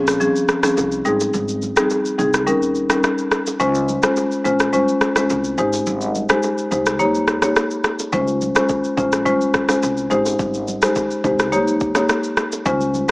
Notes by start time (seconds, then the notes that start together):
Already playing: A#1
0.07 cross-stick, shaker
0.20 F3 C4 C#4 G#4, low conga, shaker
0.36 shaker
0.48 cross-stick, shaker
0.63 F3 C4 C#4 G#4, cross-stick, low bongo, shaker
0.77 C2, high bongo, shaker
0.92 shaker
1.05 G#1 G3 C4 D#4 G#4, high bongo, shaker
1.20 high bongo, shaker
1.34 G#1, low conga, shaker
1.48 shaker
1.62 low conga, shaker
1.76 G3 C4 D#4 G#4, cross-stick, low bongo, shaker
1.90 high bongo, shaker
2.05 shaker
2.18 C2 G3 C4 D#4 G#4, low bongo, shaker
2.34 cross-stick, shaker
2.47 D#2 G3 C#4 D#4 A#4, low conga, shaker
2.62 shaker
2.75 shaker
2.90 G3 C#4 D#4 A#4, cross-stick, low bongo, shaker
3.04 cross-stick, high bongo, shaker
3.18 shaker
3.31 cross-stick, high bongo, shaker
3.47 high bongo, shaker
3.60 C#2 G#3 C#4 F4 C5, low conga, shaker
3.75 shaker
3.88 low conga, shaker
4.03 G#3 C#4 F4 C5, cross-stick, low bongo, shaker
4.16 high bongo, shaker
4.32 shaker
4.45 A#1 G#3 C#4 F4 C5, low bongo, shaker
4.60 cross-stick, shaker
4.73 G#3 C#4 F4 C5, low conga, shaker
4.88 shaker
5.01 cross-stick, shaker
5.16 G#3 C#4 F4 C5, cross-stick, low bongo, shaker
5.30 C2, high bongo, shaker
5.44 shaker
5.58 G#1 G#3 D#4 G4 C5, high bongo, shaker
5.73 high bongo, shaker
5.86 G#1, low conga, shaker
6.01 shaker
6.15 low conga, shaker
6.29 G#3 D#4 G4 C5, cross-stick, low bongo, shaker
6.43 high bongo, shaker
6.58 shaker
6.71 C2 G#3 D#4 G4 C5, low bongo, shaker
6.86 cross-stick, shaker
6.99 D#2 A#3 D#4 G4 C#5, low conga, shaker
7.15 shaker
7.27 cross-stick, shaker
7.42 A#3 D#4 G4 C#5, cross-stick, low bongo, shaker
7.56 cross-stick, high bongo, shaker
7.71 shaker
7.84 cross-stick, high bongo, shaker
7.99 high bongo, shaker
8.12 C#2 G#3 C#4 F4 C5, kick, low conga, shaker
8.27 shaker
8.41 low conga, shaker
8.55 G#3 C#4 F4 C5, cross-stick, low bongo, shaker
8.69 kick, high bongo, shaker
8.84 shaker
8.97 A#1 G#3 C#4 F4 C5, kick, low bongo, shaker
9.12 cross-stick, shaker
9.25 G#3 C#4 F4 C5, kick, low conga, shaker
9.41 shaker
9.54 kick, cross-stick, shaker
9.69 G#3 C#4 F4 C5, cross-stick, low bongo, shaker
9.83 C2, high bongo, shaker
9.97 shaker
10.10 G#1 G#3 D#4 G4 C5, high bongo, shaker
10.26 high bongo, shaker
10.39 G#1, kick, low conga, shaker
10.54 shaker
10.68 low conga, shaker
10.82 G#3 D#4 G4 C5, cross-stick, low bongo, shaker
10.95 kick, high bongo, shaker
11.11 shaker
11.24 C2 G#3 D#4 G4 C5, kick, low bongo, shaker
11.39 cross-stick, shaker
11.52 D#2 A#3 D#4 G4 C#5, low conga, shaker
11.68 shaker
11.80 kick, shaker
11.95 A#3 D#4 G4 C#5, cross-stick, low bongo, shaker
12.09 cross-stick, high bongo, shaker
12.24 shaker
12.37 cross-stick, high bongo, shaker
12.52 high bongo, shaker
12.65 C#2 G#3 C#4 F4 C5, kick, low conga, shaker
12.81 shaker
12.94 low conga, shaker